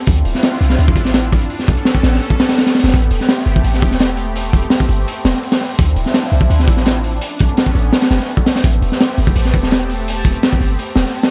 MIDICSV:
0, 0, Header, 1, 5, 480
1, 0, Start_track
1, 0, Key_signature, 0, "minor"
1, 0, Tempo, 357143
1, 95, Time_signature, 4, 2, 24, 8
1, 15194, End_track
2, 0, Start_track
2, 0, Title_t, "Synth texture"
2, 0, Program_c, 0, 99
2, 11622, Note_on_c, 0, 81, 88
2, 15194, Note_off_c, 0, 81, 0
2, 15194, End_track
3, 0, Start_track
3, 0, Title_t, "Analog synth pad"
3, 0, Program_c, 1, 89
3, 0, Note_on_c, 1, 60, 76
3, 95, Note_on_c, 1, 62, 76
3, 95, Note_on_c, 1, 64, 74
3, 95, Note_on_c, 1, 65, 92
3, 1960, Note_off_c, 1, 60, 0
3, 1996, Note_off_c, 1, 64, 0
3, 1996, Note_off_c, 1, 65, 0
3, 2017, Note_on_c, 1, 59, 82
3, 2017, Note_on_c, 1, 61, 75
3, 2017, Note_on_c, 1, 69, 89
3, 3897, Note_off_c, 1, 62, 0
3, 3917, Note_off_c, 1, 61, 0
3, 3917, Note_off_c, 1, 69, 0
3, 3935, Note_on_c, 1, 67, 91
3, 3936, Note_on_c, 1, 57, 83
3, 3936, Note_on_c, 1, 60, 74
3, 7722, Note_off_c, 1, 59, 0
3, 7737, Note_off_c, 1, 67, 0
3, 7738, Note_off_c, 1, 57, 0
3, 7771, Note_on_c, 1, 53, 82
3, 7771, Note_on_c, 1, 64, 87
3, 7773, Note_on_c, 1, 62, 74
3, 9642, Note_off_c, 1, 60, 0
3, 9674, Note_off_c, 1, 53, 0
3, 9674, Note_off_c, 1, 64, 0
3, 9692, Note_on_c, 1, 61, 74
3, 9693, Note_on_c, 1, 57, 80
3, 9693, Note_on_c, 1, 59, 75
3, 11576, Note_off_c, 1, 62, 0
3, 11595, Note_off_c, 1, 59, 0
3, 11595, Note_off_c, 1, 61, 0
3, 11609, Note_on_c, 1, 60, 77
3, 11610, Note_on_c, 1, 67, 93
3, 11611, Note_on_c, 1, 59, 75
3, 15194, Note_off_c, 1, 57, 0
3, 15194, Note_off_c, 1, 59, 0
3, 15194, Note_off_c, 1, 60, 0
3, 15194, Note_off_c, 1, 67, 0
3, 15194, End_track
4, 0, Start_track
4, 0, Title_t, "808-style bass"
4, 0, Program_c, 2, 38
4, 98, Note_on_c, 2, 38, 100
4, 313, Note_off_c, 2, 38, 0
4, 335, Note_on_c, 2, 26, 86
4, 445, Note_off_c, 2, 26, 0
4, 817, Note_on_c, 2, 36, 102
4, 1033, Note_off_c, 2, 36, 0
4, 1055, Note_on_c, 2, 38, 104
4, 1286, Note_on_c, 2, 33, 83
4, 1307, Note_off_c, 2, 38, 0
4, 1992, Note_off_c, 2, 33, 0
4, 2262, Note_on_c, 2, 35, 86
4, 2369, Note_off_c, 2, 35, 0
4, 2734, Note_on_c, 2, 33, 103
4, 2951, Note_off_c, 2, 33, 0
4, 3815, Note_on_c, 2, 30, 97
4, 3922, Note_off_c, 2, 30, 0
4, 3949, Note_on_c, 2, 33, 97
4, 4159, Note_off_c, 2, 33, 0
4, 4174, Note_on_c, 2, 28, 88
4, 4285, Note_off_c, 2, 28, 0
4, 4652, Note_on_c, 2, 31, 102
4, 4870, Note_off_c, 2, 31, 0
4, 4889, Note_on_c, 2, 33, 100
4, 5138, Note_on_c, 2, 28, 82
4, 5158, Note_off_c, 2, 33, 0
4, 6078, Note_off_c, 2, 28, 0
4, 6093, Note_on_c, 2, 28, 87
4, 6204, Note_off_c, 2, 28, 0
4, 6571, Note_on_c, 2, 31, 102
4, 6790, Note_off_c, 2, 31, 0
4, 7054, Note_on_c, 2, 28, 98
4, 7165, Note_off_c, 2, 28, 0
4, 7781, Note_on_c, 2, 38, 100
4, 7995, Note_off_c, 2, 38, 0
4, 8011, Note_on_c, 2, 26, 89
4, 8123, Note_off_c, 2, 26, 0
4, 8492, Note_on_c, 2, 36, 101
4, 8710, Note_off_c, 2, 36, 0
4, 8735, Note_on_c, 2, 38, 104
4, 8972, Note_on_c, 2, 33, 84
4, 8992, Note_off_c, 2, 38, 0
4, 9675, Note_off_c, 2, 33, 0
4, 9952, Note_on_c, 2, 35, 87
4, 10054, Note_off_c, 2, 35, 0
4, 10415, Note_on_c, 2, 33, 103
4, 10632, Note_off_c, 2, 33, 0
4, 10895, Note_on_c, 2, 30, 102
4, 11005, Note_off_c, 2, 30, 0
4, 11615, Note_on_c, 2, 33, 100
4, 11831, Note_off_c, 2, 33, 0
4, 11854, Note_on_c, 2, 28, 88
4, 11965, Note_off_c, 2, 28, 0
4, 12338, Note_on_c, 2, 31, 103
4, 12553, Note_off_c, 2, 31, 0
4, 12574, Note_on_c, 2, 33, 105
4, 12819, Note_on_c, 2, 28, 83
4, 12839, Note_off_c, 2, 33, 0
4, 13758, Note_off_c, 2, 28, 0
4, 13774, Note_on_c, 2, 28, 87
4, 13885, Note_off_c, 2, 28, 0
4, 14254, Note_on_c, 2, 31, 100
4, 14471, Note_off_c, 2, 31, 0
4, 14731, Note_on_c, 2, 28, 98
4, 14843, Note_off_c, 2, 28, 0
4, 15194, End_track
5, 0, Start_track
5, 0, Title_t, "Drums"
5, 87, Note_on_c, 9, 46, 91
5, 99, Note_on_c, 9, 36, 110
5, 217, Note_on_c, 9, 42, 43
5, 221, Note_off_c, 9, 46, 0
5, 233, Note_off_c, 9, 36, 0
5, 337, Note_on_c, 9, 46, 65
5, 351, Note_off_c, 9, 42, 0
5, 467, Note_on_c, 9, 38, 40
5, 471, Note_off_c, 9, 46, 0
5, 576, Note_on_c, 9, 46, 90
5, 581, Note_off_c, 9, 38, 0
5, 581, Note_on_c, 9, 38, 121
5, 693, Note_off_c, 9, 38, 0
5, 693, Note_on_c, 9, 38, 57
5, 710, Note_off_c, 9, 46, 0
5, 819, Note_on_c, 9, 46, 73
5, 828, Note_off_c, 9, 38, 0
5, 938, Note_on_c, 9, 38, 57
5, 953, Note_off_c, 9, 46, 0
5, 1058, Note_on_c, 9, 46, 65
5, 1072, Note_off_c, 9, 38, 0
5, 1185, Note_on_c, 9, 36, 86
5, 1192, Note_off_c, 9, 46, 0
5, 1287, Note_off_c, 9, 36, 0
5, 1287, Note_on_c, 9, 36, 87
5, 1298, Note_on_c, 9, 46, 68
5, 1411, Note_on_c, 9, 38, 56
5, 1421, Note_off_c, 9, 36, 0
5, 1432, Note_off_c, 9, 46, 0
5, 1531, Note_on_c, 9, 46, 85
5, 1534, Note_off_c, 9, 38, 0
5, 1534, Note_on_c, 9, 38, 104
5, 1659, Note_on_c, 9, 42, 48
5, 1665, Note_off_c, 9, 46, 0
5, 1668, Note_off_c, 9, 38, 0
5, 1778, Note_on_c, 9, 46, 74
5, 1781, Note_on_c, 9, 36, 99
5, 1793, Note_off_c, 9, 42, 0
5, 1905, Note_on_c, 9, 42, 44
5, 1913, Note_off_c, 9, 46, 0
5, 1915, Note_off_c, 9, 36, 0
5, 2013, Note_on_c, 9, 46, 60
5, 2039, Note_off_c, 9, 42, 0
5, 2140, Note_on_c, 9, 38, 34
5, 2148, Note_off_c, 9, 46, 0
5, 2240, Note_on_c, 9, 46, 65
5, 2260, Note_on_c, 9, 36, 94
5, 2275, Note_off_c, 9, 38, 0
5, 2374, Note_off_c, 9, 46, 0
5, 2381, Note_on_c, 9, 42, 46
5, 2394, Note_off_c, 9, 36, 0
5, 2491, Note_on_c, 9, 38, 111
5, 2508, Note_on_c, 9, 46, 94
5, 2516, Note_off_c, 9, 42, 0
5, 2616, Note_on_c, 9, 36, 91
5, 2625, Note_off_c, 9, 38, 0
5, 2643, Note_off_c, 9, 46, 0
5, 2731, Note_on_c, 9, 38, 104
5, 2742, Note_on_c, 9, 46, 73
5, 2750, Note_off_c, 9, 36, 0
5, 2859, Note_off_c, 9, 38, 0
5, 2859, Note_on_c, 9, 38, 53
5, 2877, Note_off_c, 9, 46, 0
5, 2983, Note_on_c, 9, 46, 56
5, 2993, Note_off_c, 9, 38, 0
5, 3096, Note_on_c, 9, 36, 81
5, 3118, Note_off_c, 9, 46, 0
5, 3222, Note_on_c, 9, 38, 112
5, 3223, Note_on_c, 9, 46, 73
5, 3230, Note_off_c, 9, 36, 0
5, 3343, Note_off_c, 9, 38, 0
5, 3343, Note_on_c, 9, 38, 110
5, 3349, Note_off_c, 9, 46, 0
5, 3349, Note_on_c, 9, 46, 84
5, 3464, Note_off_c, 9, 46, 0
5, 3464, Note_on_c, 9, 46, 84
5, 3470, Note_off_c, 9, 38, 0
5, 3470, Note_on_c, 9, 38, 108
5, 3581, Note_off_c, 9, 38, 0
5, 3581, Note_on_c, 9, 38, 101
5, 3586, Note_off_c, 9, 46, 0
5, 3586, Note_on_c, 9, 46, 85
5, 3692, Note_off_c, 9, 38, 0
5, 3692, Note_on_c, 9, 38, 97
5, 3694, Note_off_c, 9, 46, 0
5, 3694, Note_on_c, 9, 46, 66
5, 3756, Note_off_c, 9, 46, 0
5, 3756, Note_on_c, 9, 46, 73
5, 3762, Note_off_c, 9, 38, 0
5, 3762, Note_on_c, 9, 38, 88
5, 3818, Note_off_c, 9, 38, 0
5, 3818, Note_on_c, 9, 38, 97
5, 3820, Note_off_c, 9, 46, 0
5, 3820, Note_on_c, 9, 46, 66
5, 3871, Note_off_c, 9, 38, 0
5, 3871, Note_on_c, 9, 38, 89
5, 3880, Note_off_c, 9, 46, 0
5, 3880, Note_on_c, 9, 46, 69
5, 3923, Note_off_c, 9, 46, 0
5, 3923, Note_on_c, 9, 46, 87
5, 3949, Note_on_c, 9, 36, 103
5, 4006, Note_off_c, 9, 38, 0
5, 4058, Note_off_c, 9, 46, 0
5, 4060, Note_on_c, 9, 42, 41
5, 4083, Note_off_c, 9, 36, 0
5, 4175, Note_on_c, 9, 46, 73
5, 4194, Note_off_c, 9, 42, 0
5, 4310, Note_off_c, 9, 46, 0
5, 4311, Note_on_c, 9, 38, 42
5, 4417, Note_off_c, 9, 38, 0
5, 4417, Note_on_c, 9, 38, 125
5, 4423, Note_on_c, 9, 46, 94
5, 4544, Note_off_c, 9, 38, 0
5, 4544, Note_on_c, 9, 38, 52
5, 4557, Note_off_c, 9, 46, 0
5, 4659, Note_on_c, 9, 46, 65
5, 4679, Note_off_c, 9, 38, 0
5, 4785, Note_on_c, 9, 36, 95
5, 4793, Note_off_c, 9, 46, 0
5, 4896, Note_on_c, 9, 46, 81
5, 4919, Note_off_c, 9, 36, 0
5, 5025, Note_on_c, 9, 38, 40
5, 5031, Note_off_c, 9, 46, 0
5, 5123, Note_on_c, 9, 46, 70
5, 5139, Note_on_c, 9, 36, 100
5, 5159, Note_off_c, 9, 38, 0
5, 5257, Note_off_c, 9, 46, 0
5, 5259, Note_on_c, 9, 38, 49
5, 5273, Note_off_c, 9, 36, 0
5, 5367, Note_on_c, 9, 46, 95
5, 5381, Note_off_c, 9, 38, 0
5, 5381, Note_on_c, 9, 38, 127
5, 5499, Note_on_c, 9, 42, 41
5, 5502, Note_off_c, 9, 46, 0
5, 5515, Note_off_c, 9, 38, 0
5, 5602, Note_on_c, 9, 46, 69
5, 5634, Note_off_c, 9, 42, 0
5, 5737, Note_off_c, 9, 46, 0
5, 5855, Note_on_c, 9, 46, 91
5, 5989, Note_off_c, 9, 46, 0
5, 6093, Note_on_c, 9, 36, 89
5, 6097, Note_on_c, 9, 46, 68
5, 6215, Note_on_c, 9, 42, 46
5, 6227, Note_off_c, 9, 36, 0
5, 6231, Note_off_c, 9, 46, 0
5, 6320, Note_on_c, 9, 38, 109
5, 6334, Note_on_c, 9, 46, 87
5, 6350, Note_off_c, 9, 42, 0
5, 6454, Note_on_c, 9, 36, 96
5, 6455, Note_off_c, 9, 38, 0
5, 6468, Note_off_c, 9, 46, 0
5, 6569, Note_on_c, 9, 46, 61
5, 6588, Note_off_c, 9, 36, 0
5, 6703, Note_off_c, 9, 46, 0
5, 6826, Note_on_c, 9, 46, 91
5, 6961, Note_off_c, 9, 46, 0
5, 7056, Note_on_c, 9, 38, 106
5, 7057, Note_on_c, 9, 46, 85
5, 7179, Note_off_c, 9, 38, 0
5, 7179, Note_on_c, 9, 38, 46
5, 7191, Note_off_c, 9, 46, 0
5, 7303, Note_on_c, 9, 46, 64
5, 7313, Note_off_c, 9, 38, 0
5, 7417, Note_off_c, 9, 46, 0
5, 7417, Note_on_c, 9, 38, 99
5, 7417, Note_on_c, 9, 46, 85
5, 7540, Note_off_c, 9, 38, 0
5, 7540, Note_on_c, 9, 38, 54
5, 7551, Note_off_c, 9, 46, 0
5, 7667, Note_on_c, 9, 46, 68
5, 7675, Note_off_c, 9, 38, 0
5, 7776, Note_off_c, 9, 46, 0
5, 7776, Note_on_c, 9, 46, 89
5, 7779, Note_on_c, 9, 36, 114
5, 7902, Note_on_c, 9, 42, 47
5, 7911, Note_off_c, 9, 46, 0
5, 7914, Note_off_c, 9, 36, 0
5, 8013, Note_on_c, 9, 46, 61
5, 8036, Note_off_c, 9, 42, 0
5, 8144, Note_on_c, 9, 38, 43
5, 8147, Note_off_c, 9, 46, 0
5, 8254, Note_off_c, 9, 38, 0
5, 8254, Note_on_c, 9, 38, 119
5, 8257, Note_on_c, 9, 46, 93
5, 8377, Note_off_c, 9, 38, 0
5, 8377, Note_on_c, 9, 38, 54
5, 8391, Note_off_c, 9, 46, 0
5, 8494, Note_on_c, 9, 46, 66
5, 8512, Note_off_c, 9, 38, 0
5, 8612, Note_on_c, 9, 36, 92
5, 8629, Note_off_c, 9, 46, 0
5, 8740, Note_on_c, 9, 46, 83
5, 8746, Note_off_c, 9, 36, 0
5, 8863, Note_on_c, 9, 38, 42
5, 8874, Note_off_c, 9, 46, 0
5, 8973, Note_on_c, 9, 36, 99
5, 8988, Note_on_c, 9, 46, 71
5, 8998, Note_off_c, 9, 38, 0
5, 9097, Note_on_c, 9, 38, 49
5, 9108, Note_off_c, 9, 36, 0
5, 9122, Note_off_c, 9, 46, 0
5, 9217, Note_on_c, 9, 46, 95
5, 9226, Note_off_c, 9, 38, 0
5, 9226, Note_on_c, 9, 38, 111
5, 9338, Note_on_c, 9, 42, 43
5, 9351, Note_off_c, 9, 46, 0
5, 9361, Note_off_c, 9, 38, 0
5, 9458, Note_on_c, 9, 46, 66
5, 9473, Note_off_c, 9, 42, 0
5, 9592, Note_off_c, 9, 46, 0
5, 9695, Note_on_c, 9, 46, 92
5, 9830, Note_off_c, 9, 46, 0
5, 9934, Note_on_c, 9, 46, 72
5, 9953, Note_on_c, 9, 36, 99
5, 10059, Note_on_c, 9, 42, 41
5, 10068, Note_off_c, 9, 46, 0
5, 10087, Note_off_c, 9, 36, 0
5, 10177, Note_on_c, 9, 46, 88
5, 10186, Note_on_c, 9, 38, 120
5, 10193, Note_off_c, 9, 42, 0
5, 10301, Note_on_c, 9, 36, 98
5, 10311, Note_off_c, 9, 46, 0
5, 10320, Note_off_c, 9, 38, 0
5, 10419, Note_on_c, 9, 46, 65
5, 10435, Note_off_c, 9, 36, 0
5, 10553, Note_off_c, 9, 46, 0
5, 10651, Note_on_c, 9, 38, 105
5, 10658, Note_on_c, 9, 46, 75
5, 10774, Note_off_c, 9, 46, 0
5, 10774, Note_on_c, 9, 46, 84
5, 10779, Note_off_c, 9, 38, 0
5, 10779, Note_on_c, 9, 38, 109
5, 10894, Note_off_c, 9, 38, 0
5, 10894, Note_on_c, 9, 38, 102
5, 10898, Note_off_c, 9, 46, 0
5, 10898, Note_on_c, 9, 46, 82
5, 11024, Note_off_c, 9, 38, 0
5, 11024, Note_on_c, 9, 38, 53
5, 11032, Note_off_c, 9, 46, 0
5, 11128, Note_on_c, 9, 46, 61
5, 11159, Note_off_c, 9, 38, 0
5, 11251, Note_on_c, 9, 36, 88
5, 11262, Note_off_c, 9, 46, 0
5, 11375, Note_on_c, 9, 38, 113
5, 11377, Note_on_c, 9, 46, 81
5, 11386, Note_off_c, 9, 36, 0
5, 11498, Note_off_c, 9, 38, 0
5, 11498, Note_on_c, 9, 38, 104
5, 11504, Note_off_c, 9, 46, 0
5, 11504, Note_on_c, 9, 46, 89
5, 11613, Note_on_c, 9, 36, 98
5, 11617, Note_off_c, 9, 46, 0
5, 11617, Note_on_c, 9, 46, 91
5, 11633, Note_off_c, 9, 38, 0
5, 11734, Note_on_c, 9, 42, 42
5, 11747, Note_off_c, 9, 36, 0
5, 11752, Note_off_c, 9, 46, 0
5, 11856, Note_on_c, 9, 46, 61
5, 11868, Note_off_c, 9, 42, 0
5, 11985, Note_on_c, 9, 38, 46
5, 11991, Note_off_c, 9, 46, 0
5, 12101, Note_on_c, 9, 46, 86
5, 12103, Note_off_c, 9, 38, 0
5, 12103, Note_on_c, 9, 38, 127
5, 12223, Note_off_c, 9, 38, 0
5, 12223, Note_on_c, 9, 38, 54
5, 12236, Note_off_c, 9, 46, 0
5, 12339, Note_on_c, 9, 46, 70
5, 12357, Note_off_c, 9, 38, 0
5, 12461, Note_on_c, 9, 36, 95
5, 12474, Note_off_c, 9, 46, 0
5, 12575, Note_on_c, 9, 46, 98
5, 12595, Note_off_c, 9, 36, 0
5, 12704, Note_on_c, 9, 38, 39
5, 12710, Note_off_c, 9, 46, 0
5, 12816, Note_on_c, 9, 46, 62
5, 12819, Note_on_c, 9, 36, 89
5, 12838, Note_off_c, 9, 38, 0
5, 12942, Note_on_c, 9, 38, 57
5, 12951, Note_off_c, 9, 46, 0
5, 12953, Note_off_c, 9, 36, 0
5, 13053, Note_on_c, 9, 46, 88
5, 13064, Note_off_c, 9, 38, 0
5, 13064, Note_on_c, 9, 38, 111
5, 13178, Note_on_c, 9, 42, 44
5, 13187, Note_off_c, 9, 46, 0
5, 13199, Note_off_c, 9, 38, 0
5, 13296, Note_on_c, 9, 46, 69
5, 13313, Note_off_c, 9, 42, 0
5, 13431, Note_off_c, 9, 46, 0
5, 13548, Note_on_c, 9, 46, 88
5, 13682, Note_off_c, 9, 46, 0
5, 13775, Note_on_c, 9, 36, 87
5, 13786, Note_on_c, 9, 46, 73
5, 13905, Note_on_c, 9, 42, 43
5, 13909, Note_off_c, 9, 36, 0
5, 13920, Note_off_c, 9, 46, 0
5, 14017, Note_on_c, 9, 46, 91
5, 14021, Note_on_c, 9, 38, 117
5, 14040, Note_off_c, 9, 42, 0
5, 14147, Note_on_c, 9, 36, 96
5, 14152, Note_off_c, 9, 46, 0
5, 14155, Note_off_c, 9, 38, 0
5, 14266, Note_on_c, 9, 46, 73
5, 14282, Note_off_c, 9, 36, 0
5, 14400, Note_off_c, 9, 46, 0
5, 14500, Note_on_c, 9, 46, 82
5, 14635, Note_off_c, 9, 46, 0
5, 14724, Note_on_c, 9, 38, 100
5, 14740, Note_on_c, 9, 46, 72
5, 14858, Note_off_c, 9, 38, 0
5, 14859, Note_on_c, 9, 38, 55
5, 14874, Note_off_c, 9, 46, 0
5, 14981, Note_on_c, 9, 46, 57
5, 14993, Note_off_c, 9, 38, 0
5, 15096, Note_off_c, 9, 46, 0
5, 15096, Note_on_c, 9, 46, 83
5, 15098, Note_on_c, 9, 38, 108
5, 15194, Note_off_c, 9, 38, 0
5, 15194, Note_off_c, 9, 46, 0
5, 15194, End_track
0, 0, End_of_file